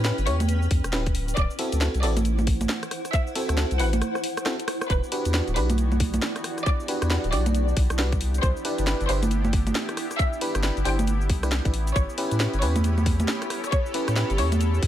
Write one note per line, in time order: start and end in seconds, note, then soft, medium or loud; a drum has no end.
0.00 0.12 A2 medium
0.00 1.15 C#4 medium
0.00 1.15 B4 medium
0.00 1.15 G5 medium
0.05 0.20 C#4 medium
0.05 0.20 E4 medium
0.05 0.20 G4 medium
0.05 0.20 B4 medium
0.05 snare loud
0.05 cabasa medium
0.18 0.28 G1 medium
0.18 closed hi-hat soft
0.18 cabasa soft
0.27 0.68 E2 medium
0.27 0.37 C#4 medium
0.27 0.37 E4 medium
0.27 0.37 G4 medium
0.27 0.37 C#5 loud
0.27 0.48 C#5 loud
0.27 cross-stick soft
0.27 open hi-hat loud
0.40 closed hi-hat medium
0.40 high conga medium
0.40 cabasa medium
0.49 closed hi-hat medium
0.49 cabasa medium
0.62 cabasa soft
0.71 0.81 E2 medium
0.71 kick loud
0.71 open hi-hat loud
0.84 0.94 E1 medium
0.84 cross-stick medium
0.84 closed hi-hat medium
0.84 cabasa medium
0.93 1.34 D1 loud
0.93 1.03 C#4 medium
0.93 1.03 E4 medium
0.93 1.03 G4 medium
0.93 1.03 B4 loud
0.93 snare loud
0.93 cabasa medium
1.06 kick loud
1.06 closed hi-hat medium
1.06 cabasa soft
1.15 12.92 E4 medium
1.15 open hi-hat loud
1.28 closed hi-hat soft
1.28 cabasa medium
1.37 1.48 D1 loud
1.37 1.58 D5 loud
1.37 kick loud
1.37 closed hi-hat medium
1.37 cabasa medium
1.50 cabasa soft
1.59 1.79 C4 loud
1.59 1.79 E4 medium
1.59 1.79 F#4 medium
1.59 1.79 A4 loud
1.59 open hi-hat loud
1.72 1.89 D2 medium
1.72 4.90 C5 medium
1.72 closed hi-hat medium
1.72 cabasa medium
1.81 1.96 C4 medium
1.81 1.96 E4 medium
1.81 1.96 F#4 medium
1.81 1.96 A4 medium
1.81 snare loud
1.81 cabasa medium
1.94 2.05 C2 medium
1.94 closed hi-hat soft
1.94 cabasa soft
1.99 2.66 A1 medium
1.99 2.18 C4 loud
1.99 2.18 E4 medium
1.99 2.18 F#4 medium
1.99 2.18 A4 loud
1.99 2.24 D5 loud
1.99 4.90 F#5 medium
1.99 open hi-hat loud
2.17 closed hi-hat medium
2.17 high conga medium
2.17 cabasa medium
2.25 closed hi-hat medium
2.25 cabasa medium
2.39 high conga medium
2.39 cabasa soft
2.47 kick loud
2.47 open hi-hat loud
2.61 closed hi-hat medium
2.61 high conga medium
2.61 cabasa medium
2.69 snare loud
2.69 cabasa medium
2.83 cross-stick medium
2.83 closed hi-hat medium
2.83 cabasa soft
2.91 cross-stick medium
2.91 open hi-hat loud
3.05 cross-stick soft
3.05 closed hi-hat soft
3.05 cabasa medium
3.13 3.35 E5 loud
3.13 kick loud
3.13 closed hi-hat medium
3.13 cabasa medium
3.27 cabasa soft
3.35 3.56 C4 loud
3.35 3.56 E4 medium
3.35 3.56 F#4 medium
3.35 3.56 A4 loud
3.35 open hi-hat loud
3.49 3.65 D2 medium
3.49 cross-stick medium
3.49 closed hi-hat medium
3.49 cabasa medium
3.57 3.73 C4 medium
3.57 3.73 E4 medium
3.57 3.73 F#4 medium
3.57 3.73 A4 medium
3.57 snare loud
3.57 cabasa medium
3.71 3.81 C2 medium
3.71 closed hi-hat soft
3.71 cabasa soft
3.79 4.02 A1 medium
3.79 3.90 C4 medium
3.79 3.90 E4 medium
3.79 3.90 F#4 medium
3.79 3.90 B4 loud
3.79 4.01 F#5 medium
3.79 open hi-hat loud
3.93 closed hi-hat medium
3.93 high conga medium
3.93 cabasa medium
4.02 cross-stick medium
4.02 closed hi-hat medium
4.02 cabasa medium
4.15 cross-stick medium
4.15 cabasa soft
4.24 open hi-hat loud
4.37 cross-stick medium
4.37 closed hi-hat medium
4.37 cabasa medium
4.46 4.56 C4 medium
4.46 4.56 E4 medium
4.46 4.56 F#4 medium
4.46 4.56 A4 loud
4.46 cross-stick medium
4.46 snare loud
4.46 cabasa medium
4.59 closed hi-hat medium
4.59 cabasa soft
4.68 cross-stick loud
4.68 open hi-hat loud
4.81 cross-stick medium
4.81 closed hi-hat soft
4.81 cabasa medium
4.90 5.01 E1 loud
4.90 8.18 B3 medium
4.90 11.70 D4 medium
4.90 8.18 F#4 medium
4.90 13.46 G4 medium
4.90 5.11 B4 loud
4.90 kick loud
4.90 closed hi-hat medium
4.90 cabasa medium
5.03 cabasa soft
5.12 5.32 D4 loud
5.12 5.32 F#4 medium
5.12 5.32 G4 medium
5.12 5.32 B4 loud
5.12 open hi-hat loud
5.25 5.41 E2 medium
5.25 closed hi-hat medium
5.25 cabasa medium
5.32 5.49 D4 medium
5.32 5.49 F#4 medium
5.32 5.49 G4 medium
5.32 5.49 B4 medium
5.32 9.11 D5 medium
5.32 snare loud
5.32 cabasa medium
5.48 5.57 D1 medium
5.48 closed hi-hat soft
5.48 cabasa soft
5.56 6.19 B1 medium
5.56 5.71 D4 loud
5.56 5.71 F#4 medium
5.56 5.71 G4 medium
5.56 5.77 B4 medium
5.56 5.71 B4 loud
5.56 open hi-hat loud
5.70 closed hi-hat medium
5.70 high conga medium
5.70 cabasa medium
5.78 closed hi-hat medium
5.78 cabasa medium
5.92 high conga medium
5.92 cabasa soft
6.00 kick loud
6.00 open hi-hat loud
6.14 closed hi-hat medium
6.14 high conga medium
6.14 cabasa medium
6.22 snare loud
6.22 cabasa medium
6.36 cross-stick medium
6.36 closed hi-hat medium
6.36 cabasa soft
6.44 cross-stick medium
6.44 open hi-hat loud
6.58 cross-stick soft
6.58 closed hi-hat soft
6.58 cabasa medium
6.66 6.88 D5 loud
6.66 kick loud
6.66 closed hi-hat medium
6.66 cabasa medium
6.80 cabasa soft
6.88 7.09 D4 loud
6.88 7.09 F#4 medium
6.88 7.09 G4 medium
6.88 7.09 B4 loud
6.88 open hi-hat loud
7.02 7.18 E2 medium
7.02 cross-stick medium
7.02 closed hi-hat medium
7.02 cabasa medium
7.10 7.26 D4 medium
7.10 7.26 F#4 medium
7.10 7.26 G4 medium
7.10 7.26 B4 loud
7.10 snare loud
7.10 cabasa medium
7.24 7.34 D1 medium
7.24 closed hi-hat soft
7.24 cabasa soft
7.32 7.74 B1 medium
7.32 7.43 D4 medium
7.32 7.43 F#4 medium
7.32 7.43 G4 medium
7.32 7.54 D5 medium
7.32 7.43 D5 loud
7.32 cross-stick soft
7.32 open hi-hat loud
7.46 closed hi-hat medium
7.46 high conga medium
7.46 cabasa medium
7.55 closed hi-hat medium
7.55 cabasa medium
7.68 cabasa soft
7.77 7.87 B1 loud
7.77 kick loud
7.77 open hi-hat loud
7.90 8.00 B1 medium
7.90 cross-stick medium
7.90 closed hi-hat soft
7.90 cabasa medium
7.99 8.40 C2 loud
7.99 8.09 D4 medium
7.99 8.09 F#4 medium
7.99 8.09 G4 medium
7.99 8.09 B4 loud
7.99 snare loud
7.99 cabasa medium
8.12 kick loud
8.12 closed hi-hat medium
8.12 cabasa soft
8.21 14.87 B3 medium
8.21 14.87 E4 medium
8.21 open hi-hat loud
8.34 closed hi-hat soft
8.34 cabasa medium
8.43 8.53 C2 loud
8.43 8.64 C5 loud
8.43 kick loud
8.43 closed hi-hat medium
8.43 cabasa medium
8.57 cabasa soft
8.65 8.85 D4 loud
8.65 8.85 E4 medium
8.65 8.85 G4 medium
8.65 8.85 B4 loud
8.65 open hi-hat loud
8.78 8.94 G1 medium
8.78 closed hi-hat medium
8.78 cabasa medium
8.87 9.02 D4 medium
8.87 9.02 E4 medium
8.87 9.02 G4 medium
8.87 9.02 B4 loud
8.87 snare loud
8.87 cabasa medium
9.01 9.07 G1 medium
9.01 closed hi-hat soft
9.01 cabasa soft
9.09 9.72 G1 medium
9.09 9.24 D4 loud
9.09 9.24 E4 medium
9.09 9.24 G4 medium
9.09 9.24 B4 loud
9.09 9.30 C5 loud
9.09 open hi-hat loud
9.23 closed hi-hat medium
9.23 high conga medium
9.23 cabasa medium
9.31 closed hi-hat medium
9.31 cabasa medium
9.39 14.87 B5 medium
9.45 high conga medium
9.45 cabasa soft
9.53 kick loud
9.53 open hi-hat loud
9.67 closed hi-hat soft
9.67 high conga medium
9.67 cabasa medium
9.75 snare loud
9.75 cabasa medium
9.89 cross-stick medium
9.89 closed hi-hat medium
9.89 cabasa soft
9.97 cross-stick medium
9.97 open hi-hat loud
10.11 cross-stick soft
10.11 closed hi-hat soft
10.11 cabasa medium
10.19 10.41 E5 loud
10.19 kick loud
10.19 closed hi-hat medium
10.19 cabasa medium
10.33 cabasa soft
10.41 10.62 D4 loud
10.41 10.62 E4 medium
10.41 10.62 G4 medium
10.41 10.62 B4 loud
10.41 open hi-hat loud
10.55 10.71 G1 medium
10.55 cross-stick medium
10.55 closed hi-hat medium
10.55 cabasa medium
10.63 10.79 D4 medium
10.63 10.79 E4 medium
10.63 10.79 G4 medium
10.63 10.79 B4 loud
10.63 snare loud
10.63 cabasa medium
10.77 10.84 G1 medium
10.77 closed hi-hat soft
10.77 cabasa soft
10.85 11.31 G1 medium
10.85 10.96 D4 medium
10.85 10.96 E4 medium
10.85 10.96 G4 medium
10.85 10.96 C5 loud
10.85 11.07 G5 medium
10.85 cross-stick soft
10.85 open hi-hat loud
10.99 closed hi-hat medium
10.99 high conga medium
10.99 cabasa medium
11.07 closed hi-hat medium
11.07 cabasa medium
11.21 cabasa soft
11.30 11.60 C2 medium
11.30 kick loud
11.30 open hi-hat loud
11.43 11.50 D4 medium
11.43 11.50 E4 medium
11.43 11.50 G4 medium
11.43 11.50 B4 loud
11.43 cross-stick medium
11.43 closed hi-hat medium
11.43 cabasa medium
11.52 snare loud
11.52 cabasa medium
11.65 11.93 A1 medium
11.65 11.72 D4 medium
11.65 11.72 E4 medium
11.65 11.72 G4 medium
11.65 11.72 B4 medium
11.65 kick loud
11.65 closed hi-hat medium
11.65 cabasa soft
11.74 14.87 C#4 medium
11.74 14.87 G4 medium
11.74 open hi-hat loud
11.87 closed hi-hat soft
11.87 cabasa medium
11.96 12.06 A1 loud
11.96 12.17 C#5 loud
11.96 kick loud
11.96 closed hi-hat medium
11.96 cabasa medium
12.09 cabasa soft
12.18 12.38 C#4 loud
12.18 12.38 E4 medium
12.18 12.38 G4 medium
12.18 12.38 B4 loud
12.18 14.87 C#5 medium
12.18 open hi-hat loud
12.31 12.47 A2 medium
12.31 closed hi-hat medium
12.31 cabasa medium
12.40 12.55 C#4 medium
12.40 12.55 E4 medium
12.40 12.55 G4 medium
12.40 12.55 B4 medium
12.40 snare loud
12.40 cabasa medium
12.54 12.63 G1 medium
12.54 closed hi-hat soft
12.54 cabasa soft
12.62 13.25 E2 medium
12.62 12.77 C#4 loud
12.62 12.77 E4 medium
12.62 12.77 G4 medium
12.62 12.77 B4 loud
12.62 12.83 C#5 medium
12.62 open hi-hat loud
12.76 closed hi-hat medium
12.76 high conga medium
12.76 cabasa medium
12.84 closed hi-hat medium
12.84 cabasa medium
12.98 high conga medium
12.98 cabasa soft
13.06 kick loud
13.06 open hi-hat loud
13.20 closed hi-hat medium
13.20 high conga medium
13.20 cabasa medium
13.28 snare loud
13.28 cabasa medium
13.42 cross-stick medium
13.42 closed hi-hat medium
13.42 cabasa soft
13.50 14.87 A4 medium
13.50 cross-stick medium
13.50 open hi-hat loud
13.64 cross-stick soft
13.64 closed hi-hat soft
13.64 cabasa medium
13.72 13.94 C#5 loud
13.72 kick loud
13.72 closed hi-hat medium
13.72 cabasa medium
13.86 cabasa soft
13.94 14.14 C#4 medium
13.94 14.14 E4 medium
13.94 14.14 G4 medium
13.94 14.14 B4 loud
13.94 open hi-hat loud
14.08 14.24 A2 medium
14.08 cross-stick medium
14.08 closed hi-hat medium
14.08 cabasa medium
14.16 14.32 C#4 medium
14.16 14.32 E4 medium
14.16 14.32 G4 medium
14.16 14.32 B4 loud
14.16 snare loud
14.16 cabasa medium
14.30 14.40 G1 medium
14.30 closed hi-hat soft
14.30 cabasa soft
14.38 14.80 E2 medium
14.38 14.49 C#4 medium
14.38 14.49 E4 medium
14.38 14.49 G4 medium
14.38 14.60 C#5 loud
14.38 14.49 C#5 loud
14.38 cross-stick soft
14.38 open hi-hat loud
14.52 closed hi-hat medium
14.52 high conga medium
14.52 cabasa medium
14.61 closed hi-hat medium
14.61 cabasa medium
14.74 cabasa soft
14.83 14.87 E2 loud
14.83 kick loud
14.83 open hi-hat loud